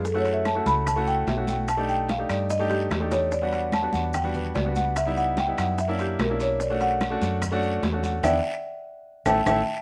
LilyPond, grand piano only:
\new Staff \with { instrumentName = "Grand piano" } { \time 4/4 \key b \minor \tempo 4 = 146 r16 <a cis' e' fis'>8. r16 <a cis' e' fis'>8. r16 <a cis' e' fis'>8. r16 <a cis' e' fis'>8. | r16 <a d' dis' g'>8. r16 <a d' dis' g'>8. r16 <a d' dis' g'>8. r16 <a d' dis' g'>8. | r16 <g b d' fis'>8. r16 <g b d' fis'>8. r16 <g b d' fis'>8. r16 <g b d' fis'>8. | r16 <g b ees' e'>8. r16 <g b ees' e'>8. r16 <ais cis' d' e'>8. r16 <ais cis' d' e'>8. |
r16 <a cis' d' fis'>8. r16 <a cis' d' fis'>8. r16 <a cis' d' fis'>8. r16 <a cis' d' fis'>8. | <b d' e'>8 r2 <a cis' e'>8 <a cis' e'>8 r8 | }